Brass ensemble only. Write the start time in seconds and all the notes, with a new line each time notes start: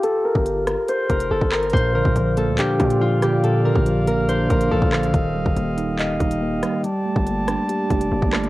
1.74 A#3 F4 D5 F5
5.14 G4 D#5
6.84 D5 A5